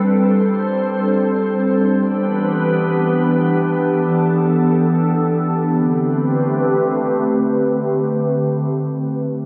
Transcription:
ambient pad
Already playing: G3 C4 D4 A4
0.06 C5
1.95 E3 B3 D4 G4 B4
3.83 A4
5.72 D3 A3 C4 G4 B4

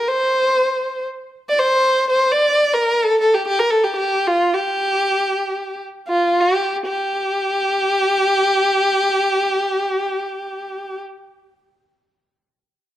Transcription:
violin
0.07 C5
1.49 D5
1.59 C5
2.10 C5
2.31 D5
2.73 A#4
3.04 A4
3.21 A4
3.34 G4
3.48 G4
3.59 A#4
3.70 A4
3.84 G4
3.96 G4
4.27 F4
4.54 G4
6.08 F4
6.40 G4
6.86 G4

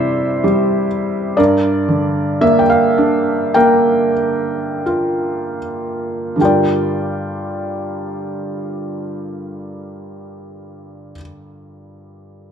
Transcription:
felt piano
Already playing: C3 G3 E4 C5 D5 E5
0.44 G3
1.37 G2 A#4 D5
1.89 D3
2.41 A#3 E5
2.59 G5
2.70 F5
2.98 D4
3.54 A#3 A#4 G5
4.86 F4
6.36 G2 D3 G3
6.41 F4 A#4 D5 G5

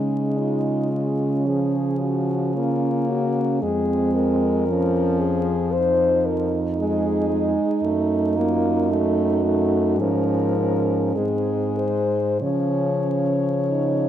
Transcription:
french horn
Already playing: C#3 G#3 C#4 D#4
0.37 D#4 F4
0.93 C#4
1.46 F3 G#4
2.00 F#4
2.55 A#3 F4
3.10 F#4
3.62 F2 G#3 C4 G#4
4.14 A#4
4.67 F3 C#4
5.19 G#4
5.71 C5
5.76 D#4
6.25 A#4
6.78 G#3 G#4
7.30 G#3
7.83 F#2 A3
8.37 A#3 F4
8.91 A3 F#4
9.45 A3
9.99 G#2 F3 C#4 A#4
10.58 C#4
11.15 G#2 G#3 C4 G#4
11.77 C5
12.41 C#3 F3 C#4 C#5
13.69 D#4

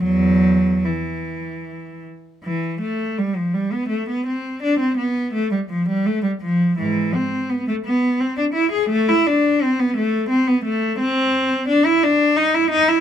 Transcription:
cello
0.03 E2 F#3
0.85 E3
2.44 E3
2.81 A3
3.18 G3
3.36 F3
3.54 G3
3.72 B3
3.89 A3
4.09 B3
4.26 C4
4.63 D4
4.79 C4
4.97 B3
5.33 A3
5.51 G3
5.70 F3
5.89 G3
6.06 A3
6.23 G3
6.41 F3
6.79 G#2 E3
7.15 C4
7.49 B3
7.68 A3
7.85 B3
8.20 C4
8.37 D4
8.54 E4
8.72 G#4
8.89 A3
9.09 E4
9.26 D4
9.62 C4
9.79 B3
9.97 A3
10.29 C4
10.47 B3
10.65 A3
10.99 C4
11.68 D4
11.86 E4
12.03 D4
12.36 D#4
12.54 E4
12.71 D#4
12.88 E4

